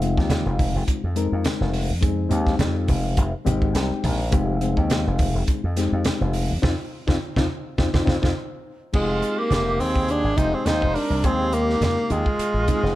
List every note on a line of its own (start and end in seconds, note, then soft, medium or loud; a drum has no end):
0.00 0.15 F1 loud
0.00 1.01 G#3 medium
0.00 1.01 C4 medium
0.00 1.02 D#4 medium
0.00 1.02 F4 medium
0.00 closed hi-hat medium
0.17 0.45 D#2 medium
0.17 kick medium
0.17 snare soft
0.30 snare loud
0.30 closed hi-hat medium
0.30 high conga medium
0.46 0.73 F1 medium
0.59 kick medium
0.59 open hi-hat medium
0.59 high conga medium
0.75 0.87 F1 medium
0.88 kick medium
0.88 closed hi-hat medium
0.88 muted conga soft
1.04 1.31 F2 medium
1.16 1.91 G#3 medium
1.16 1.91 C4 medium
1.16 1.91 D#4 medium
1.16 1.92 A#4 medium
1.16 closed hi-hat medium
1.16 muted conga soft
1.32 1.45 F2 medium
1.44 snare loud
1.44 closed hi-hat medium
1.44 high conga medium
1.61 1.91 F1 medium
1.61 snare soft
1.73 open hi-hat medium
1.73 muted conga soft
1.89 2.29 F2 medium
2.01 2.27 G#3 medium
2.01 2.27 C4 medium
2.01 2.27 D#4 medium
2.01 2.28 G#4 medium
2.01 kick loud
2.01 closed hi-hat medium
2.29 2.59 D#2 medium
2.29 3.30 G#3 medium
2.29 3.30 C4 medium
2.29 3.30 D#4 medium
2.29 3.30 G4 medium
2.29 closed hi-hat medium
2.29 low conga medium
2.47 kick medium
2.47 snare soft
2.59 2.88 F2 medium
2.59 snare medium
2.59 closed hi-hat medium
2.59 high conga medium
2.59 low conga medium
2.88 3.16 F1 medium
2.88 kick medium
2.88 open hi-hat medium
2.88 high conga medium
3.17 3.32 F1 medium
3.17 kick medium
3.17 closed hi-hat medium
3.17 muted conga soft
3.45 3.73 G#1 medium
3.45 4.21 G#3 medium
3.45 4.21 C4 medium
3.45 4.21 D#4 medium
3.45 4.21 G4 medium
3.45 3.73 D#5 medium
3.45 closed hi-hat medium
3.45 muted conga soft
3.45 high conga medium
3.62 kick medium
3.73 3.90 C2 medium
3.73 4.28 G5 medium
3.73 snare loud
3.73 closed hi-hat medium
3.90 muted slap bass stroke soft
4.04 4.31 A#1 medium
4.04 kick medium
4.04 open hi-hat medium
4.04 muted conga soft
4.04 high conga medium
4.31 4.75 F1 loud
4.31 4.57 G#3 medium
4.31 4.57 C4 medium
4.31 4.57 D#4 medium
4.31 4.58 G4 medium
4.31 kick loud
4.31 closed hi-hat medium
4.61 5.61 G#3 medium
4.61 5.61 C4 medium
4.61 5.61 D#4 medium
4.61 5.61 G#4 medium
4.61 closed hi-hat medium
4.77 5.04 D#2 medium
4.77 kick medium
4.90 snare loud
4.90 closed hi-hat medium
4.90 high conga medium
5.07 5.34 F1 medium
5.19 kick medium
5.19 open hi-hat medium
5.19 high conga medium
5.35 5.47 F1 medium
5.47 kick medium
5.47 closed hi-hat medium
5.47 muted conga soft
5.64 5.91 F2 medium
5.77 6.52 G#3 medium
5.77 6.52 C4 medium
5.77 6.52 D#4 medium
5.77 6.52 G4 medium
5.77 snare soft
5.77 closed hi-hat medium
5.77 muted conga soft
5.92 6.05 F2 medium
6.05 snare loud
6.05 closed hi-hat medium
6.05 high conga medium
6.21 6.52 F1 medium
6.33 open hi-hat medium
6.33 muted conga soft
6.50 6.63 F2 medium
6.62 6.75 F2 medium
6.62 6.73 C4 medium
6.62 6.73 D#4 medium
6.62 6.73 F4 medium
6.62 kick medium
6.62 snare medium
6.62 high conga medium
7.07 7.17 F2 medium
7.07 7.16 C4 loud
7.07 7.16 D#4 medium
7.07 7.16 F4 medium
7.07 kick medium
7.07 snare medium
7.07 high conga medium
7.36 7.46 F2 medium
7.36 7.45 C4 medium
7.36 7.45 D#4 medium
7.36 7.45 F4 medium
7.36 kick medium
7.36 snare medium
7.36 high conga loud
7.78 7.90 F2 medium
7.78 7.88 C4 medium
7.78 7.88 D#4 medium
7.78 7.88 F4 medium
7.78 kick medium
7.78 snare medium
7.78 high conga medium
7.93 8.04 F2 medium
7.93 8.02 C4 medium
7.93 8.02 D#4 medium
7.93 8.02 F4 medium
7.93 kick medium
7.93 snare medium
7.93 high conga medium
8.05 8.19 F2 medium
8.05 8.16 C4 medium
8.05 8.16 D#4 medium
8.05 8.16 F4 medium
8.05 kick medium
8.05 snare loud
8.05 high conga medium
8.22 8.32 F2 medium
8.22 8.31 C4 medium
8.22 8.31 D#4 medium
8.22 8.31 F4 medium
8.22 kick loud
8.22 snare medium
8.22 high conga medium
8.93 9.21 F1 medium
8.93 9.93 G#3 medium
8.93 9.40 G#3 medium
8.93 9.93 C4 medium
8.93 9.93 D#4 medium
8.93 9.40 F4 medium
8.93 9.93 G4 medium
8.93 kick loud
8.93 crash medium
8.93 muted conga soft
9.22 closed hi-hat soft
9.38 9.82 A#3 medium
9.38 9.81 G4 medium
9.50 9.78 F1 medium
9.50 snare medium
9.50 closed hi-hat medium
9.50 high conga medium
9.79 10.22 D#2 medium
9.79 10.12 C4 medium
9.79 10.08 G#4 medium
9.79 open hi-hat medium
9.96 kick medium
10.08 10.39 D4 medium
10.08 10.39 G#4 medium
10.08 closed hi-hat medium
10.08 muted conga soft
10.24 10.37 G#1 medium
10.37 10.53 F1 medium
10.37 11.12 G#3 medium
10.37 11.12 C4 medium
10.37 11.13 D#4 medium
10.37 10.56 D#4 medium
10.37 11.13 G4 medium
10.37 10.54 C5 medium
10.37 kick medium
10.37 closed hi-hat medium
10.37 high conga medium
10.53 10.68 C4 medium
10.53 10.67 G#4 medium
10.65 10.81 D#2 medium
10.65 10.97 D#4 medium
10.65 10.96 C5 medium
10.65 snare loud
10.65 closed hi-hat medium
10.65 high conga medium
10.82 10.95 F1 medium
10.82 kick medium
10.94 11.27 D4 medium
10.94 11.25 A#4 medium
10.94 open hi-hat medium
10.94 muted conga soft
11.10 11.23 C2 medium
11.24 11.79 D#2 medium
11.24 12.24 G#3 medium
11.24 12.24 C4 medium
11.24 11.55 C4 medium
11.24 12.24 D#4 medium
11.24 12.24 G4 medium
11.24 11.56 G#4 medium
11.24 kick loud
11.24 closed hi-hat medium
11.53 12.13 A#3 medium
11.53 12.12 G4 medium
11.53 closed hi-hat medium
11.53 muted conga soft
11.70 snare soft
11.81 11.96 F2 medium
11.81 snare loud
11.81 closed hi-hat medium
11.81 high conga medium
11.81 low conga medium
12.10 12.25 D#2 medium
12.10 12.95 G#3 medium
12.10 12.95 F4 medium
12.10 closed hi-hat medium
12.10 low conga medium
12.26 kick medium
12.39 muted slap bass stroke soft
12.39 closed hi-hat medium
12.39 muted conga soft
12.54 12.67 A#1 medium
12.67 12.95 G#3 medium
12.67 12.95 C4 medium
12.67 12.95 D#4 medium
12.67 12.95 G#4 medium
12.67 kick medium
12.67 closed hi-hat medium
12.67 high conga medium
12.83 12.95 F1 medium
12.83 snare soft